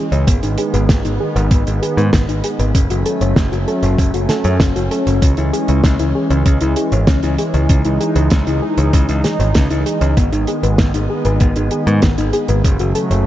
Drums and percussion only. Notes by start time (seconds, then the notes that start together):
0.12 closed hi-hat
0.27 kick, closed hi-hat
0.43 closed hi-hat
0.58 closed hi-hat
0.74 closed hi-hat
0.89 kick, snare, closed hi-hat
1.05 closed hi-hat
1.36 closed hi-hat
1.51 kick, closed hi-hat
1.67 closed hi-hat
1.83 closed hi-hat
1.98 closed hi-hat
2.13 kick, snare, closed hi-hat
2.29 closed hi-hat
2.44 closed hi-hat
2.59 closed hi-hat
2.75 kick, closed hi-hat
2.90 closed hi-hat
3.06 closed hi-hat
3.21 closed hi-hat
3.36 kick, snare, closed hi-hat
3.53 closed hi-hat
3.68 closed hi-hat
3.83 closed hi-hat
3.98 kick, closed hi-hat
4.14 closed hi-hat
4.29 snare, closed hi-hat
4.44 closed hi-hat
4.60 kick, snare, closed hi-hat
4.76 closed hi-hat
4.91 closed hi-hat
5.07 closed hi-hat
5.22 kick, closed hi-hat
5.37 closed hi-hat
5.54 closed hi-hat
5.68 closed hi-hat
5.84 kick, snare, closed hi-hat
5.99 closed hi-hat
6.30 closed hi-hat
6.46 kick, closed hi-hat
6.61 closed hi-hat
6.76 closed hi-hat
6.92 closed hi-hat
7.07 kick, snare, closed hi-hat
7.23 closed hi-hat
7.38 closed hi-hat
7.54 closed hi-hat
7.69 kick, closed hi-hat
7.85 closed hi-hat
8.01 closed hi-hat
8.16 closed hi-hat
8.30 kick, snare, closed hi-hat
8.47 closed hi-hat
8.78 closed hi-hat
8.93 kick, closed hi-hat
9.09 closed hi-hat
9.24 snare, closed hi-hat
9.40 closed hi-hat
9.55 kick, snare, closed hi-hat
9.70 closed hi-hat
9.86 closed hi-hat
10.01 closed hi-hat
10.17 kick, closed hi-hat
10.33 closed hi-hat
10.47 closed hi-hat
10.63 closed hi-hat
10.78 kick, snare, closed hi-hat
10.94 closed hi-hat
11.25 closed hi-hat
11.40 kick, closed hi-hat
11.56 closed hi-hat
11.71 closed hi-hat
11.87 closed hi-hat
12.02 kick, snare, closed hi-hat
12.18 closed hi-hat
12.33 closed hi-hat
12.48 closed hi-hat
12.64 kick, closed hi-hat
12.79 closed hi-hat
12.95 closed hi-hat
13.11 closed hi-hat